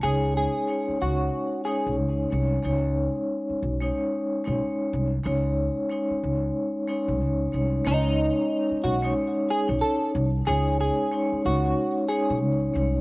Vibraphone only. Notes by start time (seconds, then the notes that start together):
0.01 G#3 C#4 D#4 C#5
0.68 G#3 C#4 D#4 C#5
1.66 G#3 C#4 D#4 C#5
2.30 G#3 C#4 D#4 C#5
2.63 G#3 C#4 D#4 C#5
3.81 G#3 C#4 D#4 C#5
4.44 G#3 C#4 D#4 C#5
5.23 G#3 C#4 D#4 C#5
5.90 G#3 C#4 D#4 C#5
6.88 G#3 C#4 D#4 C#5
7.52 G#3 C#4 D#4 C#5
7.85 G#3 C#4 D#4 C#5
9.02 G#3 C#4 D#4 C#5
9.67 C#4 D#4 C#5
10.45 G#3 C#4 D#4 C#5
11.11 G#3 C#4 D#4 C#5
12.09 G#3 C#4 D#4 C#5
12.74 G#3 C#4 D#4 C#5